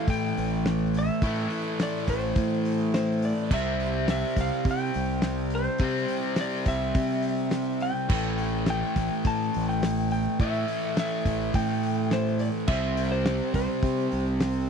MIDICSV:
0, 0, Header, 1, 5, 480
1, 0, Start_track
1, 0, Tempo, 573066
1, 1029, Time_signature, 4, 2, 24, 8
1, 12309, End_track
2, 0, Start_track
2, 0, Title_t, "Electric slide guitar"
2, 0, Program_c, 0, 29
2, 83, Note_on_c, 0, 79, 96
2, 818, Note_off_c, 0, 79, 0
2, 825, Note_on_c, 0, 76, 98
2, 1529, Note_off_c, 0, 76, 0
2, 1533, Note_on_c, 0, 74, 90
2, 1753, Note_off_c, 0, 74, 0
2, 1756, Note_on_c, 0, 72, 92
2, 2457, Note_off_c, 0, 72, 0
2, 2467, Note_on_c, 0, 72, 92
2, 2715, Note_off_c, 0, 72, 0
2, 2721, Note_on_c, 0, 74, 90
2, 2959, Note_off_c, 0, 74, 0
2, 2962, Note_on_c, 0, 76, 102
2, 3402, Note_off_c, 0, 76, 0
2, 3436, Note_on_c, 0, 76, 97
2, 3679, Note_off_c, 0, 76, 0
2, 3691, Note_on_c, 0, 77, 97
2, 3904, Note_off_c, 0, 77, 0
2, 3943, Note_on_c, 0, 79, 102
2, 4648, Note_on_c, 0, 72, 94
2, 4667, Note_off_c, 0, 79, 0
2, 5368, Note_on_c, 0, 74, 92
2, 5379, Note_off_c, 0, 72, 0
2, 5596, Note_on_c, 0, 76, 102
2, 5605, Note_off_c, 0, 74, 0
2, 6553, Note_on_c, 0, 79, 106
2, 6580, Note_off_c, 0, 76, 0
2, 7278, Note_off_c, 0, 79, 0
2, 7288, Note_on_c, 0, 79, 107
2, 7725, Note_off_c, 0, 79, 0
2, 7765, Note_on_c, 0, 81, 104
2, 8091, Note_off_c, 0, 81, 0
2, 8117, Note_on_c, 0, 79, 104
2, 8466, Note_off_c, 0, 79, 0
2, 8476, Note_on_c, 0, 79, 111
2, 8695, Note_off_c, 0, 79, 0
2, 8717, Note_on_c, 0, 76, 105
2, 9199, Note_off_c, 0, 76, 0
2, 9209, Note_on_c, 0, 76, 101
2, 9677, Note_on_c, 0, 79, 112
2, 9692, Note_off_c, 0, 76, 0
2, 10159, Note_on_c, 0, 72, 102
2, 10166, Note_off_c, 0, 79, 0
2, 10387, Note_on_c, 0, 74, 100
2, 10400, Note_off_c, 0, 72, 0
2, 10452, Note_off_c, 0, 74, 0
2, 10618, Note_on_c, 0, 76, 106
2, 10986, Note_on_c, 0, 72, 99
2, 10993, Note_off_c, 0, 76, 0
2, 11342, Note_off_c, 0, 72, 0
2, 11352, Note_on_c, 0, 72, 89
2, 12309, Note_off_c, 0, 72, 0
2, 12309, End_track
3, 0, Start_track
3, 0, Title_t, "Overdriven electric guitar"
3, 0, Program_c, 1, 29
3, 0, Note_on_c, 1, 45, 102
3, 0, Note_on_c, 1, 52, 105
3, 0, Note_on_c, 1, 57, 104
3, 1016, Note_off_c, 1, 45, 0
3, 1029, Note_off_c, 1, 57, 0
3, 1032, Note_on_c, 1, 45, 102
3, 1050, Note_off_c, 1, 52, 0
3, 1053, Note_on_c, 1, 52, 107
3, 1065, Note_on_c, 1, 57, 109
3, 2936, Note_off_c, 1, 45, 0
3, 2945, Note_on_c, 1, 48, 96
3, 2952, Note_off_c, 1, 57, 0
3, 2957, Note_off_c, 1, 52, 0
3, 2960, Note_on_c, 1, 55, 101
3, 2967, Note_on_c, 1, 60, 104
3, 4852, Note_off_c, 1, 48, 0
3, 4861, Note_on_c, 1, 48, 93
3, 4875, Note_off_c, 1, 55, 0
3, 4878, Note_on_c, 1, 55, 103
3, 4889, Note_off_c, 1, 60, 0
3, 4892, Note_on_c, 1, 60, 108
3, 6769, Note_off_c, 1, 48, 0
3, 6775, Note_on_c, 1, 45, 88
3, 6791, Note_off_c, 1, 55, 0
3, 6794, Note_on_c, 1, 52, 94
3, 6803, Note_off_c, 1, 60, 0
3, 6806, Note_on_c, 1, 57, 105
3, 8686, Note_off_c, 1, 45, 0
3, 8701, Note_off_c, 1, 57, 0
3, 8715, Note_on_c, 1, 45, 101
3, 8723, Note_off_c, 1, 52, 0
3, 8727, Note_on_c, 1, 52, 109
3, 8743, Note_on_c, 1, 57, 97
3, 10616, Note_off_c, 1, 45, 0
3, 10623, Note_on_c, 1, 48, 94
3, 10630, Note_off_c, 1, 57, 0
3, 10637, Note_off_c, 1, 52, 0
3, 10640, Note_on_c, 1, 55, 97
3, 10654, Note_on_c, 1, 60, 97
3, 12309, Note_off_c, 1, 48, 0
3, 12309, Note_off_c, 1, 55, 0
3, 12309, Note_off_c, 1, 60, 0
3, 12309, End_track
4, 0, Start_track
4, 0, Title_t, "Fingered electric bass"
4, 0, Program_c, 2, 33
4, 64, Note_on_c, 2, 45, 101
4, 265, Note_off_c, 2, 45, 0
4, 319, Note_on_c, 2, 33, 96
4, 912, Note_off_c, 2, 33, 0
4, 1027, Note_on_c, 2, 45, 108
4, 1227, Note_off_c, 2, 45, 0
4, 1743, Note_on_c, 2, 33, 111
4, 1945, Note_off_c, 2, 33, 0
4, 1982, Note_on_c, 2, 45, 93
4, 2781, Note_off_c, 2, 45, 0
4, 2943, Note_on_c, 2, 36, 99
4, 3543, Note_off_c, 2, 36, 0
4, 3664, Note_on_c, 2, 36, 104
4, 3766, Note_off_c, 2, 36, 0
4, 3898, Note_on_c, 2, 48, 104
4, 4101, Note_off_c, 2, 48, 0
4, 4154, Note_on_c, 2, 36, 92
4, 4749, Note_off_c, 2, 36, 0
4, 4861, Note_on_c, 2, 48, 107
4, 5063, Note_off_c, 2, 48, 0
4, 5586, Note_on_c, 2, 36, 105
4, 5786, Note_off_c, 2, 36, 0
4, 5823, Note_on_c, 2, 48, 98
4, 6621, Note_off_c, 2, 48, 0
4, 6789, Note_on_c, 2, 33, 93
4, 7385, Note_off_c, 2, 33, 0
4, 7509, Note_on_c, 2, 33, 102
4, 7608, Note_off_c, 2, 33, 0
4, 7752, Note_on_c, 2, 45, 100
4, 7949, Note_off_c, 2, 45, 0
4, 8012, Note_on_c, 2, 33, 98
4, 8598, Note_off_c, 2, 33, 0
4, 8714, Note_on_c, 2, 45, 106
4, 8910, Note_off_c, 2, 45, 0
4, 9428, Note_on_c, 2, 33, 106
4, 9626, Note_off_c, 2, 33, 0
4, 9668, Note_on_c, 2, 45, 95
4, 10463, Note_off_c, 2, 45, 0
4, 10625, Note_on_c, 2, 36, 102
4, 11223, Note_off_c, 2, 36, 0
4, 11345, Note_on_c, 2, 36, 97
4, 11445, Note_off_c, 2, 36, 0
4, 11587, Note_on_c, 2, 48, 100
4, 11786, Note_off_c, 2, 48, 0
4, 11832, Note_on_c, 2, 36, 100
4, 12309, Note_off_c, 2, 36, 0
4, 12309, End_track
5, 0, Start_track
5, 0, Title_t, "Drums"
5, 64, Note_on_c, 9, 36, 110
5, 66, Note_on_c, 9, 46, 89
5, 148, Note_off_c, 9, 36, 0
5, 149, Note_off_c, 9, 46, 0
5, 314, Note_on_c, 9, 46, 62
5, 397, Note_off_c, 9, 46, 0
5, 548, Note_on_c, 9, 46, 81
5, 551, Note_on_c, 9, 38, 111
5, 632, Note_off_c, 9, 46, 0
5, 634, Note_off_c, 9, 38, 0
5, 790, Note_on_c, 9, 46, 65
5, 874, Note_off_c, 9, 46, 0
5, 1022, Note_on_c, 9, 36, 114
5, 1025, Note_on_c, 9, 46, 95
5, 1106, Note_off_c, 9, 36, 0
5, 1109, Note_off_c, 9, 46, 0
5, 1258, Note_on_c, 9, 46, 69
5, 1342, Note_off_c, 9, 46, 0
5, 1503, Note_on_c, 9, 46, 93
5, 1506, Note_on_c, 9, 38, 127
5, 1587, Note_off_c, 9, 46, 0
5, 1589, Note_off_c, 9, 38, 0
5, 1737, Note_on_c, 9, 46, 65
5, 1740, Note_on_c, 9, 36, 87
5, 1821, Note_off_c, 9, 46, 0
5, 1824, Note_off_c, 9, 36, 0
5, 1973, Note_on_c, 9, 46, 81
5, 1978, Note_on_c, 9, 36, 122
5, 2057, Note_off_c, 9, 46, 0
5, 2061, Note_off_c, 9, 36, 0
5, 2221, Note_on_c, 9, 46, 64
5, 2305, Note_off_c, 9, 46, 0
5, 2462, Note_on_c, 9, 46, 77
5, 2464, Note_on_c, 9, 38, 107
5, 2545, Note_off_c, 9, 46, 0
5, 2548, Note_off_c, 9, 38, 0
5, 2699, Note_on_c, 9, 46, 62
5, 2783, Note_off_c, 9, 46, 0
5, 2939, Note_on_c, 9, 36, 118
5, 2941, Note_on_c, 9, 49, 101
5, 3023, Note_off_c, 9, 36, 0
5, 3025, Note_off_c, 9, 49, 0
5, 3183, Note_on_c, 9, 46, 61
5, 3266, Note_off_c, 9, 46, 0
5, 3415, Note_on_c, 9, 46, 90
5, 3418, Note_on_c, 9, 38, 126
5, 3499, Note_off_c, 9, 46, 0
5, 3501, Note_off_c, 9, 38, 0
5, 3656, Note_on_c, 9, 36, 84
5, 3657, Note_on_c, 9, 46, 69
5, 3740, Note_off_c, 9, 36, 0
5, 3741, Note_off_c, 9, 46, 0
5, 3895, Note_on_c, 9, 46, 81
5, 3896, Note_on_c, 9, 36, 114
5, 3979, Note_off_c, 9, 46, 0
5, 3980, Note_off_c, 9, 36, 0
5, 4138, Note_on_c, 9, 46, 64
5, 4222, Note_off_c, 9, 46, 0
5, 4370, Note_on_c, 9, 46, 83
5, 4373, Note_on_c, 9, 38, 113
5, 4454, Note_off_c, 9, 46, 0
5, 4456, Note_off_c, 9, 38, 0
5, 4609, Note_on_c, 9, 46, 63
5, 4693, Note_off_c, 9, 46, 0
5, 4845, Note_on_c, 9, 46, 91
5, 4855, Note_on_c, 9, 36, 115
5, 4928, Note_off_c, 9, 46, 0
5, 4939, Note_off_c, 9, 36, 0
5, 5095, Note_on_c, 9, 46, 70
5, 5179, Note_off_c, 9, 46, 0
5, 5327, Note_on_c, 9, 46, 94
5, 5329, Note_on_c, 9, 38, 118
5, 5411, Note_off_c, 9, 46, 0
5, 5413, Note_off_c, 9, 38, 0
5, 5575, Note_on_c, 9, 46, 69
5, 5579, Note_on_c, 9, 36, 86
5, 5658, Note_off_c, 9, 46, 0
5, 5663, Note_off_c, 9, 36, 0
5, 5818, Note_on_c, 9, 46, 89
5, 5820, Note_on_c, 9, 36, 122
5, 5901, Note_off_c, 9, 46, 0
5, 5904, Note_off_c, 9, 36, 0
5, 6051, Note_on_c, 9, 46, 67
5, 6135, Note_off_c, 9, 46, 0
5, 6290, Note_on_c, 9, 46, 78
5, 6293, Note_on_c, 9, 38, 103
5, 6374, Note_off_c, 9, 46, 0
5, 6377, Note_off_c, 9, 38, 0
5, 6536, Note_on_c, 9, 46, 61
5, 6620, Note_off_c, 9, 46, 0
5, 6781, Note_on_c, 9, 49, 113
5, 6782, Note_on_c, 9, 36, 116
5, 6865, Note_off_c, 9, 49, 0
5, 6866, Note_off_c, 9, 36, 0
5, 7019, Note_on_c, 9, 46, 60
5, 7103, Note_off_c, 9, 46, 0
5, 7255, Note_on_c, 9, 46, 83
5, 7258, Note_on_c, 9, 38, 114
5, 7339, Note_off_c, 9, 46, 0
5, 7341, Note_off_c, 9, 38, 0
5, 7505, Note_on_c, 9, 36, 88
5, 7505, Note_on_c, 9, 46, 60
5, 7589, Note_off_c, 9, 36, 0
5, 7589, Note_off_c, 9, 46, 0
5, 7746, Note_on_c, 9, 46, 80
5, 7747, Note_on_c, 9, 36, 118
5, 7830, Note_off_c, 9, 46, 0
5, 7831, Note_off_c, 9, 36, 0
5, 7992, Note_on_c, 9, 46, 61
5, 8076, Note_off_c, 9, 46, 0
5, 8230, Note_on_c, 9, 46, 88
5, 8233, Note_on_c, 9, 38, 114
5, 8314, Note_off_c, 9, 46, 0
5, 8317, Note_off_c, 9, 38, 0
5, 8468, Note_on_c, 9, 46, 62
5, 8552, Note_off_c, 9, 46, 0
5, 8708, Note_on_c, 9, 36, 123
5, 8709, Note_on_c, 9, 46, 85
5, 8792, Note_off_c, 9, 36, 0
5, 8793, Note_off_c, 9, 46, 0
5, 8947, Note_on_c, 9, 46, 68
5, 9030, Note_off_c, 9, 46, 0
5, 9186, Note_on_c, 9, 46, 94
5, 9189, Note_on_c, 9, 38, 121
5, 9270, Note_off_c, 9, 46, 0
5, 9272, Note_off_c, 9, 38, 0
5, 9427, Note_on_c, 9, 36, 86
5, 9428, Note_on_c, 9, 46, 68
5, 9511, Note_off_c, 9, 36, 0
5, 9512, Note_off_c, 9, 46, 0
5, 9667, Note_on_c, 9, 36, 106
5, 9667, Note_on_c, 9, 46, 89
5, 9751, Note_off_c, 9, 36, 0
5, 9751, Note_off_c, 9, 46, 0
5, 9910, Note_on_c, 9, 46, 64
5, 9993, Note_off_c, 9, 46, 0
5, 10143, Note_on_c, 9, 46, 81
5, 10146, Note_on_c, 9, 38, 106
5, 10227, Note_off_c, 9, 46, 0
5, 10230, Note_off_c, 9, 38, 0
5, 10380, Note_on_c, 9, 46, 65
5, 10463, Note_off_c, 9, 46, 0
5, 10617, Note_on_c, 9, 49, 110
5, 10621, Note_on_c, 9, 36, 125
5, 10701, Note_off_c, 9, 49, 0
5, 10705, Note_off_c, 9, 36, 0
5, 10865, Note_on_c, 9, 46, 66
5, 10948, Note_off_c, 9, 46, 0
5, 11101, Note_on_c, 9, 46, 85
5, 11104, Note_on_c, 9, 38, 127
5, 11185, Note_off_c, 9, 46, 0
5, 11187, Note_off_c, 9, 38, 0
5, 11342, Note_on_c, 9, 36, 87
5, 11343, Note_on_c, 9, 46, 64
5, 11425, Note_off_c, 9, 36, 0
5, 11427, Note_off_c, 9, 46, 0
5, 11581, Note_on_c, 9, 36, 111
5, 11582, Note_on_c, 9, 46, 81
5, 11665, Note_off_c, 9, 36, 0
5, 11666, Note_off_c, 9, 46, 0
5, 11825, Note_on_c, 9, 46, 60
5, 11908, Note_off_c, 9, 46, 0
5, 12064, Note_on_c, 9, 46, 87
5, 12066, Note_on_c, 9, 38, 117
5, 12148, Note_off_c, 9, 46, 0
5, 12150, Note_off_c, 9, 38, 0
5, 12309, End_track
0, 0, End_of_file